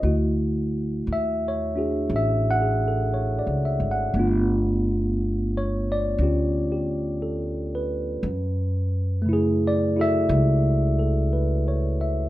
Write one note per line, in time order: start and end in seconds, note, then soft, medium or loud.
0.00 1.02 D2 medium
0.00 4.13 A3 soft
0.00 4.15 E4 soft
0.00 0.14 D#5 soft
0.05 1.76 F#4 soft
1.07 2.06 D#2 medium
1.13 1.43 E5 medium
1.48 2.09 C#5 medium
1.76 4.14 D4 soft
1.76 4.15 F#4 soft
1.76 2.61 G#4 soft
2.09 3.42 A1 medium
2.16 2.46 E5 medium
2.51 2.83 F#5 medium
2.62 2.93 G#4 soft
2.88 3.23 A4 soft
3.14 3.61 C#5 soft
3.39 3.82 D5 soft
3.47 3.78 C#2 medium
3.65 3.96 E5 soft
3.80 4.12 G#1 medium
3.91 4.26 F#5 medium
4.14 6.15 G1 medium
4.14 8.24 A3 soft
4.14 8.25 B3 soft
4.14 8.26 D4 soft
4.19 6.21 F4 medium
5.57 5.87 C#5 medium
5.92 6.44 D5 medium
6.18 8.20 D2 medium
6.18 8.24 C#4 soft
6.18 8.25 F4 soft
6.23 6.71 G4 soft
6.72 7.44 G4 soft
7.22 8.04 A4 soft
7.75 8.47 B4 medium
8.23 10.25 F#2 medium
9.22 12.29 C#3 soft
9.22 12.29 A3 medium
9.29 9.95 E4 medium
9.33 12.29 G#4 medium
9.67 9.97 D5 medium
9.96 12.29 E4 soft
9.96 12.29 F#4 soft
9.96 10.98 A4 soft
10.01 10.34 E5 loud
10.29 12.29 C#2 medium
10.99 11.52 A4 soft
11.33 11.98 B4 soft
11.68 12.21 C#5 medium
12.01 12.29 E5 soft